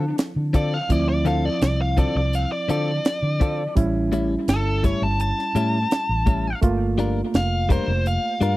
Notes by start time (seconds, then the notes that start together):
Already playing: D3 F3 C4 D4 E4
0.18 snare, closed hi-hat
0.36 D3
0.53 D3 C4 F4 A4 D5, kick, closed hi-hat
0.74 F5
0.89 D2 F3 C4 E4 D5, kick, closed hi-hat
1.09 D5
1.25 D3 C4 F4 A4 F5, closed hi-hat
1.45 D5
1.62 C2 D5, snare, closed hi-hat
1.81 F5
1.97 D3 C4 F4 A4 D5, kick, closed hi-hat
2.15 C2 D5
2.33 F5, closed hi-hat
2.52 D5
2.69 D3 C4 F4 A4 D5, closed hi-hat
3.05 snare, closed hi-hat
3.23 D3
3.40 D3 C4 F4 A4, kick, closed hi-hat
3.75 A1 G3 C#4 E4, kick, closed hi-hat
4.12 A2 G3 C#4 E4, closed hi-hat
4.48 G1 A4, snare, closed hi-hat
4.83 A2 G3 C#4 E4 C#5, kick, snare, closed hi-hat
5.02 G1 A5
5.20 A5, closed hi-hat
5.39 snare
5.55 A2 G3 C#4 E4, closed hi-hat
5.91 snare, closed hi-hat
6.09 A1
6.26 A2 G3 C#4 E4, kick, closed hi-hat
6.62 G1 A3 A#3 F4, kick, closed hi-hat
6.98 G3 D4 F4 A#4, closed hi-hat
7.34 F1 F5, snare, closed hi-hat
7.69 G3 D4 F4 A#4 C5, kick, closed hi-hat
7.88 F1
8.06 F5, closed hi-hat
8.41 G2 G3 D4 F4 A#4, closed hi-hat